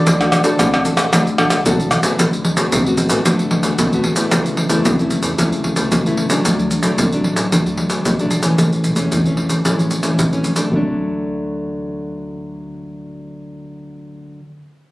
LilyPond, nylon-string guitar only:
\new Staff \with { instrumentName = "Nylon-string guitar" } { \time 4/4 \key d \major \tempo 4 = 112 << { <d' fis' a'>16 <d' fis' a'>8 <d' fis' a'>8. <d' fis' a'>8. r16 <d' fis' a'>16 r16 <d' fis' a'>8 r16 <a b fis'>16~ | <a b fis'>16 r8 <a b fis'>8 <a b fis'>8 <a b fis'>16 <a b fis'>8. <a b fis'>8 <a b fis'>8 <a b e'>16~ | <a b e'>8. <a b e'>8 <a b e'>8 <a b e'>16 <a b e'>8. <a b e'>8 <a b e'>8 <fis a d'>16~ | <fis a d'>8. <fis a d'>8 <fis a d'>8. <fis a d'>8. <fis a d'>8 <fis a d'>8 <e a cis'>16~ |
<e a cis'>8. <e a cis'>8 <e a cis'>8. <e a cis'>8. <e a cis'>8 <e a cis'>8 <fis a d'>16~ | <fis a d'>8. r2. r16 | r1 | } \\ { d4 a,4 d4 a,4 | d4 a,4 d4 a,4 | cis4 cis4 cis4 cis4 | d4 a,4 d4 a,4 |
a,4 e4 a,4 e4 | <d fis a d'>1~ | <d fis a d'>1 | } >> }